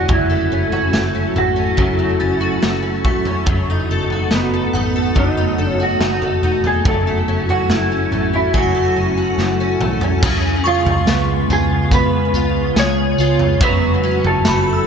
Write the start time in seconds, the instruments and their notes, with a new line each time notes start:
Already playing: twelve-string acoustic guitar C#4 D4 F#4, clean electric guitar F#4, synth bell F#6
0.08 fingered electric bass F#1, twelve-string acoustic guitar F#2, ambient pad F#3 C#4 E4 A4, kick, floor tom
0.12 clean electric guitar E4
0.30 twelve-string acoustic guitar A3
0.51 fingered electric bass F#1, twelve-string acoustic guitar C#4
0.72 twelve-string acoustic guitar F#4, floor tom
0.93 fingered electric bass F#1, twelve-string acoustic guitar A3, snare
1.15 twelve-string acoustic guitar C#4
1.35 fingered electric bass G#1, twelve-string acoustic guitar A3, clean electric guitar F#4, floor tom
1.56 twelve-string acoustic guitar C#4
1.77 fingered electric bass F#1, twelve-string acoustic guitar F#2, kick, floor tom
1.99 twelve-string acoustic guitar A3
2.20 fingered electric bass F#1, twelve-string acoustic guitar C#4, synth bell A6
2.41 twelve-string acoustic guitar F#4
2.62 fingered electric bass F#1, twelve-string acoustic guitar A3, snare
2.83 twelve-string acoustic guitar C#4
3.04 fingered electric bass E1, twelve-string acoustic guitar A3, synth bell C#6, kick
3.25 twelve-string acoustic guitar C#4, floor tom
3.46 fingered electric bass F#1, twelve-string acoustic guitar F#2, ambient pad A3 B3 D#4, kick, floor tom
3.70 twelve-string acoustic guitar D#4
3.89 fingered electric bass F#1, twelve-string acoustic guitar A4
4.10 twelve-string acoustic guitar F#4, floor tom
4.31 fingered electric bass F#1, clean electric guitar B3, twelve-string acoustic guitar D#4, snare
4.54 twelve-string acoustic guitar A4
4.73 fingered electric bass G#1, twelve-string acoustic guitar D#4, synth bell F#5, floor tom
4.96 twelve-string acoustic guitar A4
5.15 fingered electric bass F#1, twelve-string acoustic guitar F#2, kick, floor tom
5.19 clean electric guitar D#4
5.37 twelve-string acoustic guitar D#4
5.58 fingered electric bass F#1, twelve-string acoustic guitar A4
5.67 clean electric guitar C#4
5.80 twelve-string acoustic guitar F#4, clean electric guitar F#4
6.00 fingered electric bass F#1, twelve-string acoustic guitar D#4, snare
6.22 twelve-string acoustic guitar A4, floor tom
6.42 fingered electric bass E1, twelve-string acoustic guitar D#4
6.64 clean electric guitar G#4, twelve-string acoustic guitar A4, floor tom
6.85 fingered electric bass F#1, twelve-string acoustic guitar F#2, ambient pad F#3 C#4 E4 A4, clean electric guitar A4, kick, floor tom
7.07 twelve-string acoustic guitar A3
7.26 fingered electric bass F#1, twelve-string acoustic guitar C#4
7.49 twelve-string acoustic guitar F#4, clean electric guitar F#4, floor tom
7.69 fingered electric bass F#1, twelve-string acoustic guitar A3, clean electric guitar E4, snare
7.92 twelve-string acoustic guitar C#4
8.11 fingered electric bass G#1, twelve-string acoustic guitar A3, floor tom
8.33 twelve-string acoustic guitar C#4, clean electric guitar E4
8.54 fingered electric bass F#1, twelve-string acoustic guitar F#2, clean electric guitar F#4, synth bell G#5, kick, floor tom
8.75 twelve-string acoustic guitar A3
8.96 fingered electric bass F#1, twelve-string acoustic guitar C#4
9.17 twelve-string acoustic guitar F#4
9.38 fingered electric bass F#1, twelve-string acoustic guitar A3, snare
9.60 twelve-string acoustic guitar C#4
9.80 fingered electric bass B1, twelve-string acoustic guitar A3, mid tom
10.01 twelve-string acoustic guitar C#4, floor tom
10.22 fingered electric bass C#2, ambient pad C#3 G#3 B3 F4, twelve-string acoustic guitar C#3 G#4, kick, floor tom, crash, tambourine
10.64 twelve-string acoustic guitar F4, clean electric guitar F4, synth bell C#6
10.85 fingered electric bass C#2, floor tom
11.05 fingered electric bass C#2, twelve-string acoustic guitar B3, snare, tambourine
11.49 fingered electric bass C#2, twelve-string acoustic guitar F4, floor tom, tambourine
11.53 clean electric guitar G#4
11.91 twelve-string acoustic guitar B3, clean electric guitar B4, kick, floor tom, tambourine
12.33 fingered electric bass C#2, twelve-string acoustic guitar F4, tambourine
12.75 fingered electric bass C#2, twelve-string acoustic guitar G#4, snare, tambourine
12.80 clean electric guitar C#5
13.18 fingered electric bass C#2, twelve-string acoustic guitar F4, tambourine
13.39 floor tom
13.60 fingered electric bass F#1, twelve-string acoustic guitar F#2 F#4, ambient pad F#3 A3 C#4 E4, clean electric guitar B4, kick, floor tom, tambourine
14.03 twelve-string acoustic guitar C#4
14.25 fingered electric bass F#1, clean electric guitar A4, floor tom
14.45 fingered electric bass F#1, twelve-string acoustic guitar A3, synth bell B5, snare, tambourine
14.73 synth bell E6